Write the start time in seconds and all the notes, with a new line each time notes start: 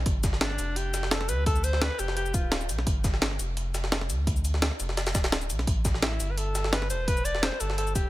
0.06 G1, kick, closed hi-hat
0.23 kick, snare, closed hi-hat, cabasa
0.33 snare
0.41 D4, snare, closed hi-hat
0.50 snare
0.59 F1, closed hi-hat, cabasa
0.76 G4, closed hi-hat
0.94 snare, closed hi-hat, cabasa
1.03 snare
1.11 A4, snare, closed hi-hat
1.21 snare
1.29 D2 B4, closed hi-hat, cabasa
1.46 A4, kick, closed hi-hat
1.56 cabasa
1.64 C5, closed hi-hat, cabasa
1.73 snare
1.81 B4, snare, closed hi-hat
1.91 snare
1.99 F1 G4, closed hi-hat, cabasa
2.08 snare
2.17 G4, closed hi-hat
2.26 cabasa
2.34 D1 F4, kick, closed hi-hat, cabasa
2.52 snare, closed hi-hat
2.61 cabasa
2.69 B1, closed hi-hat, cabasa
2.79 snare
2.87 G1, kick, closed hi-hat
3.04 kick, snare, closed hi-hat, cabasa
3.14 snare
3.22 snare, closed hi-hat
3.31 snare
3.39 F1, closed hi-hat, cabasa
3.57 closed hi-hat
3.74 snare, closed hi-hat, cabasa
3.84 snare
3.92 snare, closed hi-hat
4.01 snare
4.10 D2, closed hi-hat, cabasa
4.27 kick, closed hi-hat
4.37 cabasa
4.45 closed hi-hat, cabasa
4.54 snare
4.62 snare, closed hi-hat
4.71 snare
4.80 F1, closed hi-hat, cabasa
4.89 snare
4.97 snare, closed hi-hat
5.07 snare, closed hi-hat, cabasa
5.15 D1, kick, snare, closed hi-hat, cabasa
5.24 snare, closed hi-hat
5.32 snare, closed hi-hat
5.42 cabasa
5.50 B1, closed hi-hat, cabasa
5.59 snare, closed hi-hat
5.67 A1, kick, closed hi-hat
5.85 kick, snare, closed hi-hat, cabasa
5.94 snare
6.02 E4, snare, closed hi-hat
6.12 snare
6.20 G1, closed hi-hat, cabasa
6.31 B4
6.37 A4, closed hi-hat
6.55 snare, closed hi-hat, cabasa
6.64 snare
6.72 B4, snare, closed hi-hat
6.82 snare
6.90 E1 C5, closed hi-hat, cabasa
7.07 B4, kick, closed hi-hat
7.17 cabasa
7.25 D5, closed hi-hat, cabasa
7.35 snare
7.42 C5, snare, closed hi-hat
7.52 snare
7.60 G1 A4, closed hi-hat, cabasa
7.70 snare
7.78 A4, closed hi-hat
7.87 cabasa
7.95 E1 G4, kick, closed hi-hat, cabasa